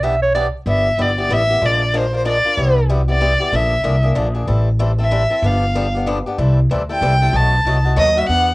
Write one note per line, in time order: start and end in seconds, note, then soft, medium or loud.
0.00 0.47 B1 medium
0.00 0.14 E3 medium
0.00 0.14 B3 loud
0.00 0.14 D4 loud
0.00 0.14 G4 loud
0.00 0.22 E5 loud
0.22 0.34 C#5 loud
0.35 0.46 E3 loud
0.35 0.46 B3 loud
0.35 0.46 D4 loud
0.35 0.46 G4 loud
0.35 0.46 D5 loud
0.66 0.92 G1 medium
0.66 0.87 G3 medium
0.66 0.87 B3 medium
0.66 0.87 E4 medium
0.66 0.87 G4 medium
0.66 1.03 E5 medium
0.98 1.25 G1 medium
0.98 1.09 G3 medium
0.98 1.09 B3 medium
0.98 1.10 E4 medium
0.98 1.10 G4 medium
0.98 1.19 D5 medium
1.18 1.29 B3 medium
1.18 1.30 E4 medium
1.18 1.30 G4 medium
1.18 1.34 D5 medium
1.29 1.57 A1 medium
1.29 1.41 G3 medium
1.29 1.41 B3 loud
1.29 1.42 E4 loud
1.29 1.41 G4 loud
1.29 1.67 E5 loud
1.49 1.61 B3 medium
1.49 1.62 E4 medium
1.49 1.62 G4 medium
1.62 2.38 A#1 medium
1.62 1.82 F3 medium
1.62 1.82 G#3 medium
1.62 1.82 D4 medium
1.62 1.82 F4 medium
1.62 1.82 A#4 medium
1.66 1.99 D5 medium
1.94 2.05 F3 medium
1.94 2.05 G#3 loud
1.94 2.05 D4 medium
1.94 2.05 F4 medium
1.94 2.05 A#4 loud
1.98 2.15 C5 medium
2.13 2.24 D4 medium
2.13 2.25 F4 medium
2.13 2.25 A#4 medium
2.13 2.27 C5 medium
2.25 2.36 F3 medium
2.25 2.36 G#3 medium
2.25 2.36 D4 loud
2.25 2.37 F4 loud
2.25 2.37 A#4 loud
2.25 2.75 D5 medium
2.45 2.57 D4 soft
2.45 2.57 F4 medium
2.45 2.57 A#4 medium
2.57 3.34 C2 loud
2.57 2.78 C3 medium
2.57 2.78 G3 medium
2.57 2.78 B3 medium
2.57 2.78 E4 medium
2.57 2.78 G4 medium
2.89 3.00 C3 medium
2.89 3.00 G3 loud
2.89 3.00 B3 medium
2.89 3.00 E4 loud
2.89 3.01 G4 loud
3.08 3.20 B3 medium
3.08 3.20 E4 medium
3.08 3.20 G4 medium
3.08 3.56 D5 medium
3.21 3.32 C3 medium
3.21 3.32 G3 medium
3.21 3.32 B3 medium
3.21 3.32 E4 loud
3.21 3.32 G4 loud
3.40 3.53 B3 medium
3.40 3.52 E4 medium
3.40 3.52 G4 medium
3.52 3.78 A#1 medium
3.52 3.73 D3 medium
3.52 3.73 F3 medium
3.52 3.73 A#3 medium
3.52 3.73 D4 medium
3.52 3.73 G#4 medium
3.52 4.05 E5 medium
3.84 4.11 C2 medium
3.84 3.95 D3 loud
3.84 3.95 F3 medium
3.84 3.95 A#3 medium
3.84 3.95 D4 loud
3.84 3.95 G#4 medium
4.03 4.14 A#3 soft
4.03 4.15 D4 medium
4.03 4.15 G#4 medium
4.15 4.43 A#1 medium
4.15 4.27 D3 medium
4.15 4.27 F3 medium
4.15 4.27 A#3 medium
4.15 4.27 D4 loud
4.15 4.27 G#4 loud
4.34 4.47 A#3 soft
4.34 4.47 D4 medium
4.34 4.47 G#4 medium
4.47 5.24 A1 medium
4.47 4.68 E3 medium
4.47 4.68 G3 medium
4.47 4.68 C4 medium
4.47 4.68 E4 medium
4.47 4.68 A4 medium
4.79 4.90 E3 medium
4.79 4.91 G3 medium
4.79 4.91 C4 loud
4.79 4.91 E4 loud
4.79 4.91 A4 loud
4.98 5.11 C4 medium
4.98 5.11 E4 medium
4.98 5.11 A4 medium
4.98 5.48 E5 medium
5.11 5.22 E3 loud
5.11 5.22 G3 loud
5.11 5.23 C4 loud
5.11 5.23 E4 loud
5.11 5.23 A4 loud
5.30 5.43 C4 soft
5.30 5.43 E4 medium
5.30 5.42 A4 medium
5.42 6.19 G1 medium
5.42 5.64 D3 medium
5.42 5.64 F3 medium
5.42 5.64 B3 medium
5.42 5.64 D4 medium
5.42 5.64 G4 medium
5.42 5.96 F5 medium
5.75 5.86 D3 loud
5.75 5.86 F3 loud
5.75 5.86 B3 medium
5.75 5.86 D4 loud
5.75 5.86 G4 loud
5.95 6.06 B3 medium
5.95 6.06 D4 medium
5.95 6.06 G4 medium
6.06 6.17 D3 medium
6.06 6.18 F3 loud
6.06 6.18 B3 loud
6.06 6.18 D4 loud
6.06 6.18 G4 loud
6.26 6.39 B3 medium
6.26 6.39 D4 medium
6.26 6.38 G4 medium
6.38 6.64 C2 loud
6.38 6.58 C3 medium
6.38 6.59 E3 medium
6.38 6.59 G3 medium
6.38 6.59 C4 medium
6.38 6.59 E4 medium
6.38 6.59 A4 medium
6.69 6.97 D2 medium
6.69 6.81 C3 medium
6.69 6.81 E3 medium
6.69 6.82 G3 loud
6.69 6.82 C4 loud
6.69 6.82 E4 loud
6.69 6.82 A4 loud
6.89 7.01 G3 medium
6.89 7.01 C4 medium
6.89 7.02 E4 medium
6.89 7.01 A4 medium
6.89 7.37 G5 loud
7.01 7.28 C2 medium
7.01 7.13 C3 loud
7.01 7.13 E3 medium
7.01 7.13 G3 loud
7.01 7.13 C4 loud
7.01 7.13 E4 loud
7.01 7.13 A4 loud
7.22 7.34 G3 medium
7.22 7.34 C4 medium
7.22 7.34 E4 medium
7.22 7.33 A4 medium
7.33 7.59 B1 loud
7.33 7.54 B2 medium
7.33 7.54 F#3 medium
7.33 7.54 A3 medium
7.33 7.54 D#4 medium
7.33 7.54 F#4 medium
7.33 7.86 A5 medium
7.65 7.92 C2 medium
7.65 7.77 B2 loud
7.65 7.77 F#3 loud
7.65 7.77 A3 medium
7.65 7.77 D#4 loud
7.65 7.77 F#4 loud
7.85 7.96 A3 medium
7.85 7.96 D#4 medium
7.85 7.96 F#4 medium
7.96 8.24 D#2 medium
7.96 8.08 B2 loud
7.96 8.08 F#3 loud
7.96 8.17 F#3 medium
7.96 8.08 A3 loud
7.96 8.08 D#4 loud
7.96 8.08 F#4 loud
7.96 8.20 D#5 loud
8.16 8.28 G3 medium
8.16 8.29 A3 medium
8.16 8.29 D#4 medium
8.16 8.28 F#4 medium
8.16 8.29 E5 loud
8.28 8.54 E2 medium
8.28 8.49 E3 medium
8.28 8.54 B3 medium
8.28 8.49 B3 medium
8.28 8.49 D4 medium
8.28 8.50 G4 medium
8.28 8.54 F#5 loud